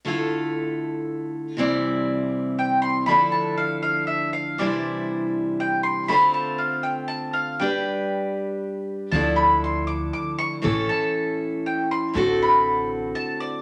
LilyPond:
<<
  \new Staff \with { instrumentName = "Mandolin" } { \time 3/4 \key d \dorian \tempo 4 = 119 r2. | r2 g''8 c'''8 | b''8 a''8 f''8 f''8 e''8 f''8 | d''4. r8 g''8 c'''8 |
b''8 a''8 f''8 g''8 a''8 f''8 | g''4. r4. | a''8 b''8 c'''8 d'''8 d'''8 cis'''8~ | cis'''8 a''4. g''8 c'''8~ |
c'''8 b''4 r8 a''8 d''8 | }
  \new Staff \with { instrumentName = "Steel-string acoustic guitar" } { \time 3/4 \key d \dorian <d a e' f' a'>2. | <c e g c' e' d''>2. | <d f a d' e' a'>2. | <c e g d' e' c''>2. |
<d a c' f' c''>2. | <g d' g' b'>2. | <d f a d' e' a'>2. | <a, e a cis' e' a'>2. |
<a, d a c' fis' a'>2. | }
  \new Staff \with { instrumentName = "Upright bass" } { \clef bass \time 3/4 \key d \dorian r2. | r2. | r2. | r2. |
r2. | r2. | d,2 r4 | a,,8 r2 r8 |
a,,2 r4 | }
>>